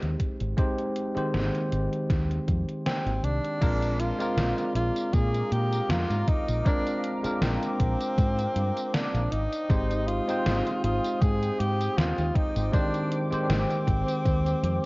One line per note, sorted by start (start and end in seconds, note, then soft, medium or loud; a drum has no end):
0.00 0.15 D#2 medium
0.00 0.53 G#3 medium
0.00 0.53 C4 medium
0.00 0.54 D#4 medium
0.00 0.54 G4 medium
0.00 0.55 C5 medium
0.00 closed hi-hat soft
0.20 kick medium
0.20 closed hi-hat medium
0.40 0.53 G#1 medium
0.40 closed hi-hat soft
0.57 1.11 G#3 medium
0.57 1.11 C4 medium
0.57 1.12 D#4 medium
0.57 1.12 G4 medium
0.57 1.12 C5 loud
0.57 kick loud
0.57 closed hi-hat medium
0.79 closed hi-hat soft
0.96 closed hi-hat medium
1.15 3.58 D#3 medium
1.15 3.57 G#3 medium
1.15 3.57 C4 medium
1.15 3.58 G4 medium
1.15 3.58 C5 medium
1.15 muted fingered electric bass stroke soft
1.15 closed hi-hat soft
1.34 1.49 G#1 loud
1.34 snare loud
1.34 closed hi-hat medium
1.55 closed hi-hat soft
1.72 1.87 G#1 medium
1.72 closed hi-hat medium
1.93 closed hi-hat soft
2.10 2.38 D#2 loud
2.10 kick loud
2.10 snare medium
2.10 closed hi-hat medium
2.31 closed hi-hat soft
2.48 2.62 F2 loud
2.48 kick medium
2.48 closed hi-hat medium
2.69 closed hi-hat soft
2.86 3.26 C4 loud
2.86 snare loud
2.86 closed hi-hat medium
3.06 3.19 G#1 medium
3.06 closed hi-hat soft
3.23 3.38 C2 loud
3.23 4.01 D4 loud
3.23 closed hi-hat medium
3.45 closed hi-hat soft
3.61 4.11 A#1 loud
3.61 4.15 G#3 medium
3.61 4.15 C4 medium
3.61 4.16 D4 medium
3.61 4.16 F4 medium
3.61 4.16 A#4 loud
3.61 14.86 C5 medium
3.61 9.28 F5 medium
3.61 9.28 A#5 medium
3.61 9.28 D6 loud
3.61 kick loud
3.61 closed hi-hat medium
3.61 tambourine medium
3.61 crash loud
3.82 closed hi-hat soft
3.82 tambourine soft
4.00 4.75 F4 loud
4.00 closed hi-hat loud
4.19 6.61 G#3 medium
4.19 6.61 C4 medium
4.19 6.62 F4 medium
4.19 6.62 A#4 medium
4.19 6.62 D5 medium
4.19 closed hi-hat soft
4.19 tambourine medium
4.37 4.52 A#1 medium
4.37 snare loud
4.37 closed hi-hat medium
4.37 tambourine soft
4.58 closed hi-hat soft
4.58 tambourine soft
4.75 4.90 A#1 medium
4.75 5.15 F4 loud
4.75 closed hi-hat loud
4.96 closed hi-hat soft
4.96 tambourine medium
5.13 5.41 A#2 loud
5.13 5.54 G#4 loud
5.13 kick loud
5.13 closed hi-hat medium
5.13 tambourine soft
5.34 closed hi-hat soft
5.34 tambourine soft
5.51 5.79 A#2 medium
5.51 5.92 G4 loud
5.51 closed hi-hat loud
5.72 closed hi-hat soft
5.72 tambourine medium
5.89 6.04 F2 medium
5.89 6.30 F4 loud
5.89 snare loud
5.89 closed hi-hat medium
5.89 tambourine soft
6.10 6.22 G#2 medium
6.10 closed hi-hat soft
6.10 tambourine soft
6.28 6.66 D#4 loud
6.28 kick loud
6.28 closed hi-hat loud
6.48 6.61 A#1 loud
6.48 closed hi-hat soft
6.48 tambourine medium
6.65 7.19 G#3 medium
6.65 7.19 C4 medium
6.65 7.19 D4 medium
6.65 7.13 D4 loud
6.65 7.20 F4 medium
6.65 7.20 A#4 loud
6.65 kick loud
6.65 closed hi-hat medium
6.65 tambourine soft
6.86 closed hi-hat soft
6.86 tambourine soft
7.04 closed hi-hat medium
7.23 9.29 G#3 medium
7.23 9.29 C4 medium
7.23 9.30 D4 medium
7.23 9.30 F4 medium
7.23 9.30 A#4 medium
7.23 muted fingered electric bass stroke soft
7.23 closed hi-hat soft
7.23 tambourine medium
7.41 7.56 A#1 loud
7.41 8.95 C4 loud
7.41 snare loud
7.41 closed hi-hat medium
7.41 tambourine soft
7.62 closed hi-hat soft
7.62 tambourine soft
7.80 7.94 A#1 medium
7.80 kick medium
7.80 closed hi-hat medium
8.00 closed hi-hat soft
8.00 tambourine medium
8.18 8.45 G#2 loud
8.18 kick loud
8.18 closed hi-hat medium
8.18 tambourine soft
8.39 closed hi-hat soft
8.39 tambourine soft
8.56 8.70 G2 loud
8.56 closed hi-hat loud
8.77 closed hi-hat soft
8.77 tambourine medium
8.94 9.33 D4 loud
8.94 snare loud
8.94 closed hi-hat medium
8.94 tambourine soft
9.14 9.26 A#1 medium
9.14 closed hi-hat soft
9.14 tambourine soft
9.31 9.46 G#1 medium
9.31 10.09 D#4 loud
9.31 14.86 G5 medium
9.31 12.33 D#6 medium
9.31 closed hi-hat loud
9.53 closed hi-hat soft
9.53 tambourine medium
9.69 10.19 G#1 loud
9.69 10.23 G#3 medium
9.69 10.23 C4 medium
9.69 10.23 D#4 medium
9.69 10.23 G4 medium
9.69 10.24 C5 loud
9.69 kick loud
9.69 closed hi-hat medium
9.69 tambourine soft
9.91 closed hi-hat soft
9.91 tambourine soft
10.07 10.83 F4 loud
10.07 closed hi-hat loud
10.27 12.69 G#3 medium
10.27 12.69 C4 medium
10.27 12.69 D#4 medium
10.27 12.70 C5 medium
10.27 12.70 G5 medium
10.27 closed hi-hat soft
10.27 tambourine medium
10.46 10.60 G#1 loud
10.46 snare loud
10.46 closed hi-hat medium
10.46 tambourine soft
10.66 closed hi-hat soft
10.66 tambourine soft
10.84 10.98 G#1 medium
10.84 11.23 F4 loud
10.84 closed hi-hat loud
11.04 closed hi-hat soft
11.04 tambourine medium
11.22 11.49 G#2 medium
11.22 11.61 G#4 loud
11.22 kick loud
11.22 closed hi-hat medium
11.22 tambourine soft
11.43 closed hi-hat soft
11.43 tambourine soft
11.60 11.87 G#2 medium
11.60 11.99 G4 loud
11.60 closed hi-hat medium
11.81 closed hi-hat soft
11.81 tambourine medium
11.97 12.12 D#2 medium
11.97 12.37 F4 loud
11.97 snare loud
11.97 closed hi-hat medium
11.97 tambourine soft
12.18 12.30 D#2 medium
12.18 closed hi-hat soft
12.18 tambourine soft
12.36 12.73 D#4 loud
12.36 14.86 D6 loud
12.36 kick loud
12.36 closed hi-hat loud
12.56 12.69 G#1 loud
12.56 closed hi-hat soft
12.56 tambourine medium
12.72 13.27 D#3 medium
12.72 13.26 G#3 medium
12.72 13.27 C4 medium
12.72 13.20 D4 loud
12.72 13.27 G4 medium
12.72 13.27 C5 loud
12.72 kick loud
12.72 closed hi-hat medium
12.72 tambourine soft
12.94 closed hi-hat soft
12.94 tambourine soft
13.12 closed hi-hat medium
13.31 14.86 D#3 medium
13.31 14.86 G#3 medium
13.31 14.86 C4 medium
13.31 14.86 G4 medium
13.31 14.86 C5 medium
13.31 muted fingered electric bass stroke soft
13.31 closed hi-hat soft
13.31 tambourine soft
13.42 13.50 D4 medium
13.49 13.64 G#1 loud
13.49 14.86 C4 loud
13.49 snare loud
13.49 closed hi-hat medium
13.49 tambourine soft
13.70 closed hi-hat soft
13.70 tambourine soft
13.87 14.02 G#1 medium
13.87 kick medium
13.87 closed hi-hat medium
14.08 closed hi-hat soft
14.08 tambourine medium
14.25 14.53 D#2 loud
14.25 kick loud
14.25 closed hi-hat medium
14.25 tambourine soft
14.46 closed hi-hat soft
14.46 tambourine soft
14.63 14.78 F2 loud
14.63 closed hi-hat medium